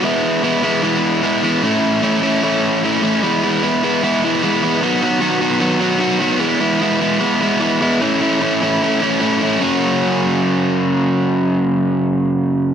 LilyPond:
\new Staff \with { instrumentName = "Overdriven electric guitar" } { \time 4/4 \key e \lydian \tempo 4 = 150 <e gis b e'>4 <e gis b e'>8 <e gis b e'>8 <e gis b e'>4 <e gis b e'>8 <e gis b e'>8 | <a, e a cis' e'>4 <a, e a cis' e'>8 <a, e a cis' e'>8 <a, e a cis' e'>4 <a, e a cis' e'>8 <a, e a cis' e'>8 | <e gis b e'>8 <e gis b e'>8 <e gis b e'>8 <e gis b e'>8 <e gis b e'>8 <e gis b e'>8 <e gis b e'>8 <e gis b e'>8 | <dis fis b fis'>8 <dis fis b fis'>8 <dis fis b fis'>8 <dis fis b fis'>8 <dis fis b fis'>8 <dis fis b fis'>8 <dis fis b fis'>8 <dis fis b fis'>8 |
<e gis b e'>8 <e gis b e'>8 <e gis b e'>8 <e gis b e'>8 <e gis b e'>8 <e gis b e'>8 <e gis b e'>8 <e gis b e'>8 | <a, e a cis' e'>8 <a, e a cis' e'>8 <a, e a cis' e'>8 <a, e a cis' e'>8 <a, e a cis' e'>8 <a, e a cis' e'>8 <a, e a cis' e'>8 <a, e a cis' e'>8 | <fis, cis fis ais cis' fis'>1~ | <fis, cis fis ais cis' fis'>1 | }